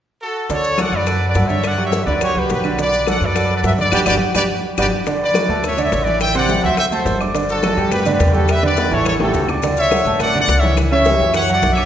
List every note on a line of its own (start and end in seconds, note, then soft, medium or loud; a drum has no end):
0.22 0.48 F#4 medium
0.22 0.48 A4 medium
0.50 0.89 D2 medium
0.50 0.73 D3 medium
0.50 0.73 D4 medium
0.50 0.79 A4 medium
0.50 0.79 C#5 medium
0.50 0.74 D5 medium
0.50 high bongo medium
0.50 high conga soft
0.50 maracas medium
0.64 high conga soft
0.64 maracas medium
0.78 1.02 F#3 medium
0.78 1.02 F#4 medium
0.78 1.02 A4 medium
0.78 0.93 D5 medium
0.78 0.93 F#5 medium
0.78 high bongo medium
0.78 high conga medium
0.78 claves medium
0.78 maracas medium
0.92 1.32 F#2 medium
0.92 1.27 B4 medium
0.92 1.27 D5 loud
0.92 high conga soft
0.92 maracas soft
1.07 1.30 F#3 medium
1.07 1.31 F#4 medium
1.07 1.31 A4 medium
1.07 high bongo medium
1.07 high conga soft
1.07 claves medium
1.07 maracas medium
1.21 high conga soft
1.28 1.45 B4 medium
1.28 1.45 D5 medium
1.35 2.01 G2 medium
1.35 1.47 F#3 medium
1.35 1.48 F#4 medium
1.35 1.48 A4 medium
1.35 high bongo medium
1.35 low bongo medium
1.35 high conga soft
1.35 maracas medium
1.46 1.73 D3 medium
1.46 1.73 D4 medium
1.46 1.65 C#5 medium
1.46 1.73 D5 medium
1.46 1.65 E5 medium
1.46 high conga medium
1.46 maracas soft
1.64 1.84 D5 medium
1.64 1.84 F#5 loud
1.64 high bongo medium
1.64 high conga soft
1.64 claves medium
1.64 maracas medium
1.78 2.01 F#3 medium
1.78 2.02 F#4 medium
1.78 2.02 G4 medium
1.78 high bongo soft
1.78 high conga soft
1.85 2.02 C#5 medium
1.85 2.02 E5 medium
1.92 high bongo medium
1.92 high conga medium
1.92 maracas medium
2.04 2.33 D2 medium
2.04 2.19 D3 medium
2.04 2.19 D4 medium
2.04 2.21 B4 medium
2.04 2.21 D5 medium
2.04 2.19 D5 medium
2.04 high bongo soft
2.04 high conga soft
2.04 maracas soft
2.21 2.33 F#3 medium
2.21 2.33 F#4 medium
2.21 2.33 G4 medium
2.21 2.35 G4 medium
2.21 2.36 C#5 medium
2.21 high bongo medium
2.21 high conga soft
2.21 claves medium
2.21 maracas medium
2.35 2.48 C#2 medium
2.35 2.59 F#3 medium
2.35 2.59 F#4 medium
2.35 2.59 G4 medium
2.35 2.50 G4 medium
2.35 2.51 B4 medium
2.35 high conga soft
2.49 3.15 B1 medium
2.49 2.77 G4 medium
2.49 2.77 B4 medium
2.49 high bongo medium
2.49 low bongo medium
2.49 high conga medium
2.49 maracas medium
2.64 2.76 D3 medium
2.64 2.76 D4 medium
2.64 2.76 D5 medium
2.64 high bongo soft
2.64 high conga soft
2.64 claves medium
2.64 maracas soft
2.79 3.02 D3 medium
2.79 3.02 D4 medium
2.79 3.06 B4 medium
2.79 3.02 D5 medium
2.79 3.06 D5 medium
2.79 high bongo medium
2.79 high conga soft
2.79 maracas medium
2.93 high conga soft
2.93 maracas medium
3.07 3.30 F#3 medium
3.07 3.30 F#4 medium
3.07 3.31 A4 medium
3.07 3.21 D5 medium
3.07 3.21 F#5 medium
3.07 high bongo medium
3.07 high conga medium
3.07 claves medium
3.07 maracas medium
3.21 3.61 F#2 medium
3.21 3.55 B4 medium
3.21 3.55 D5 medium
3.21 high conga soft
3.21 maracas soft
3.35 3.59 F#3 medium
3.35 3.59 F#4 medium
3.35 3.59 A4 medium
3.35 high bongo medium
3.35 high conga soft
3.35 claves medium
3.35 maracas medium
3.50 high conga soft
3.56 3.60 B4 medium
3.56 3.60 D5 medium
3.63 3.90 G2 medium
3.63 3.76 F#3 medium
3.63 3.76 F#4 medium
3.63 3.76 A4 medium
3.63 3.72 B4 medium
3.63 3.72 E5 medium
3.63 high bongo medium
3.63 low bongo medium
3.63 maracas medium
3.78 3.90 D3 medium
3.78 3.90 D4 medium
3.78 3.92 B4 medium
3.78 3.90 D5 medium
3.78 3.92 D5 medium
3.78 high conga medium
3.78 maracas soft
3.92 4.03 G1 medium
3.92 4.01 D4 medium
3.92 4.02 F#4 medium
3.92 4.02 G4 loud
3.92 4.00 G4 medium
3.92 4.00 B4 medium
3.92 4.00 D5 medium
3.92 low bongo loud
3.92 high conga medium
3.92 claves loud
3.92 maracas loud
4.06 4.17 G1 medium
4.06 4.15 D4 medium
4.06 4.16 F#4 medium
4.06 4.15 G4 medium
4.06 4.14 G4 medium
4.06 4.14 B4 medium
4.06 4.14 D5 medium
4.06 low bongo medium
4.06 high conga medium
4.06 claves medium
4.06 maracas medium
4.35 4.45 G1 medium
4.35 4.44 D4 medium
4.35 4.44 F#4 medium
4.35 4.44 G4 medium
4.35 4.42 G4 loud
4.35 4.43 B4 medium
4.35 4.42 D5 medium
4.35 low bongo medium
4.35 high conga medium
4.35 claves medium
4.35 maracas medium
4.78 4.88 G1 medium
4.78 4.87 D4 medium
4.78 4.87 F#4 medium
4.78 4.87 G4 medium
4.78 4.86 G4 medium
4.78 4.86 B4 medium
4.78 4.86 D5 medium
4.78 low bongo medium
4.78 high conga medium
4.78 claves medium
4.78 maracas medium
5.06 5.30 D3 medium
5.06 5.30 D4 medium
5.06 5.30 D5 medium
5.06 high bongo medium
5.06 high conga soft
5.06 maracas medium
5.20 5.61 B4 medium
5.20 5.62 D5 medium
5.20 high conga soft
5.34 5.47 F#3 medium
5.34 5.47 F#4 medium
5.34 5.47 F#5 medium
5.34 high bongo medium
5.34 high conga medium
5.34 claves medium
5.34 maracas medium
5.49 5.89 D2 medium
5.49 5.72 A3 medium
5.49 5.73 A4 medium
5.49 5.73 A5 medium
5.49 high conga soft
5.49 maracas soft
5.63 5.83 C#5 medium
5.63 5.83 E5 medium
5.63 high bongo medium
5.63 high conga soft
5.63 low conga medium
5.63 claves medium
5.63 maracas medium
5.77 6.01 D3 medium
5.77 6.01 D4 medium
5.77 6.01 D5 medium
5.77 high conga soft
5.77 maracas medium
5.84 6.01 C#5 medium
5.84 6.01 E5 medium
5.91 6.58 A1 medium
5.91 high bongo medium
5.91 low bongo medium
5.91 high conga soft
5.91 maracas medium
6.03 6.30 E3 medium
6.03 6.30 E4 medium
6.03 6.21 B4 medium
6.03 6.21 D5 medium
6.03 6.30 E5 medium
6.03 high conga medium
6.03 maracas soft
6.20 6.34 E5 medium
6.20 6.34 G5 loud
6.20 high bongo medium
6.20 high conga soft
6.20 claves medium
6.20 maracas medium
6.34 6.46 C3 medium
6.34 6.46 C4 medium
6.34 6.47 C5 medium
6.34 6.62 D5 medium
6.34 6.62 F#5 loud
6.34 high bongo soft
6.34 maracas medium
6.49 6.61 G3 medium
6.49 6.61 G4 medium
6.49 6.61 G5 medium
6.49 high bongo medium
6.49 high conga medium
6.49 maracas medium
6.63 7.03 D2 loud
6.63 6.87 F#3 medium
6.63 6.87 F#4 medium
6.63 6.77 C5 medium
6.63 6.77 E5 loud
6.63 6.87 F#5 medium
6.63 high bongo soft
6.63 high conga soft
6.63 maracas soft
6.77 6.85 C5 medium
6.77 6.84 E5 medium
6.77 high bongo medium
6.77 high conga soft
6.77 claves medium
6.77 maracas medium
6.92 7.15 A3 medium
6.92 7.15 A4 medium
6.92 7.19 A4 medium
6.92 7.19 C5 medium
6.92 7.15 A5 medium
6.92 high conga soft
6.92 maracas medium
7.05 7.71 G1 medium
7.05 high bongo medium
7.05 low bongo medium
7.05 high conga medium
7.05 maracas medium
7.20 7.32 D4 medium
7.20 7.32 D5 medium
7.20 7.32 D6 medium
7.20 high bongo soft
7.20 high conga soft
7.20 claves medium
7.20 maracas soft
7.34 7.58 D3 medium
7.34 7.58 D4 medium
7.34 7.58 D5 medium
7.34 high bongo medium
7.34 high conga soft
7.34 maracas medium
7.49 7.89 F#4 medium
7.49 7.89 A4 medium
7.49 high conga soft
7.49 maracas medium
7.63 7.75 F#3 medium
7.63 7.75 F#4 medium
7.63 7.75 F#5 medium
7.63 high bongo medium
7.63 high conga medium
7.63 claves medium
7.63 maracas medium
7.77 8.17 G2 medium
7.77 8.00 G3 medium
7.77 8.01 G4 medium
7.77 8.01 G5 medium
7.77 high conga soft
7.77 maracas soft
7.91 8.11 G4 medium
7.91 8.11 B4 medium
7.91 high bongo medium
7.91 high conga soft
7.91 low conga medium
7.91 claves medium
7.91 maracas medium
8.06 8.29 D3 medium
8.06 8.29 D4 medium
8.06 8.29 D5 medium
8.06 high conga soft
8.06 low conga medium
8.06 maracas medium
8.12 8.29 G4 medium
8.12 8.29 B4 medium
8.20 8.86 E2 medium
8.20 high bongo medium
8.20 low bongo medium
8.20 high conga soft
8.20 maracas medium
8.32 8.57 G3 medium
8.32 8.50 F#4 medium
8.32 8.58 G4 medium
8.32 8.50 A4 medium
8.32 8.58 G5 medium
8.32 high conga medium
8.32 maracas soft
8.48 8.63 B4 medium
8.48 8.64 E5 loud
8.48 high bongo medium
8.48 high conga soft
8.48 claves medium
8.48 maracas medium
8.63 8.74 D3 medium
8.63 8.75 D4 medium
8.63 8.90 B4 medium
8.63 8.75 D5 medium
8.63 8.90 D5 medium
8.63 high bongo soft
8.63 high conga soft
8.76 8.89 B3 medium
8.76 8.89 B4 medium
8.76 8.89 B5 medium
8.76 high bongo medium
8.76 high conga loud
8.76 maracas medium
8.91 9.31 A1 medium
8.91 9.14 E3 medium
8.91 9.15 E4 medium
8.91 9.06 A4 medium
8.91 9.06 C#5 loud
8.91 9.15 E5 medium
8.91 high bongo soft
8.91 high conga soft
8.91 maracas soft
9.06 9.14 A4 medium
9.06 9.13 C#5 medium
9.06 high bongo medium
9.06 high conga medium
9.06 claves medium
9.06 maracas medium
9.20 9.43 G3 medium
9.20 9.48 F#4 medium
9.20 9.44 G4 medium
9.20 9.48 A4 medium
9.20 9.44 G5 medium
9.20 high bongo loud
9.20 low conga medium
9.34 10.00 D2 medium
9.34 low bongo medium
9.34 low conga medium
9.34 maracas medium
9.48 9.60 D4 medium
9.48 9.61 D5 medium
9.48 9.61 D6 medium
9.48 low bongo medium
9.48 low conga medium
9.48 claves medium
9.48 maracas soft
9.62 9.86 D3 medium
9.62 9.87 D4 medium
9.62 9.87 D5 medium
9.62 high bongo medium
9.62 high conga soft
9.62 maracas medium
9.77 10.18 C#5 medium
9.77 10.18 E5 loud
9.77 high conga soft
9.77 maracas medium
9.91 10.03 F#3 medium
9.91 10.03 F#4 medium
9.91 10.04 F#5 medium
9.91 high bongo medium
9.91 high conga loud
9.91 claves medium
9.91 maracas medium
10.05 10.45 A1 medium
10.05 10.30 A3 medium
10.05 10.30 A4 medium
10.05 10.30 A5 medium
10.05 high conga soft
10.05 maracas soft
10.20 10.39 D5 medium
10.20 10.38 F#5 medium
10.20 high bongo medium
10.20 high conga soft
10.20 low conga medium
10.20 claves medium
10.20 maracas medium
10.34 10.58 D3 medium
10.34 10.58 D4 medium
10.34 10.58 D5 medium
10.34 high conga soft
10.34 low conga medium
10.40 10.58 D5 medium
10.40 10.57 F#5 loud
10.48 11.14 C#2 medium
10.48 high bongo medium
10.48 low bongo medium
10.48 high conga soft
10.48 maracas medium
10.59 10.78 C#5 medium
10.59 10.77 E5 medium
10.59 maracas soft
10.63 10.86 E3 medium
10.63 10.86 E4 medium
10.63 10.87 E5 medium
10.63 high conga medium
10.77 high bongo medium
10.77 high conga soft
10.77 claves medium
10.77 maracas medium
10.91 11.03 C#3 medium
10.91 11.03 C#4 medium
10.91 11.04 C#5 medium
10.91 11.32 C#5 medium
10.91 11.31 E5 loud
10.91 high bongo soft
10.91 high conga soft
11.05 11.18 G3 medium
11.05 11.18 G4 medium
11.05 11.18 G5 medium
11.05 high bongo medium
11.05 high conga loud
11.05 maracas medium
11.19 11.59 F#2 medium
11.19 11.44 E3 medium
11.19 11.44 E4 medium
11.19 11.44 E5 medium
11.19 high bongo soft
11.19 high conga soft
11.19 maracas soft
11.34 11.53 C#5 medium
11.34 11.51 F#5 loud
11.34 high bongo medium
11.34 high conga soft
11.34 claves medium
11.34 maracas medium
11.48 11.72 F#3 medium
11.48 11.73 F#4 medium
11.48 11.73 F#5 medium
11.48 high conga soft
11.48 maracas medium
11.52 11.72 D5 medium
11.52 11.70 F#5 medium
11.62 11.85 B1 medium
11.62 high bongo medium
11.62 low bongo medium
11.62 high conga medium
11.62 maracas medium
11.72 11.85 C#5 medium
11.72 11.85 E5 medium
11.77 11.85 D4 medium
11.77 11.85 D5 medium
11.77 11.85 D6 medium
11.77 high bongo soft
11.77 high conga soft
11.77 claves medium
11.77 maracas soft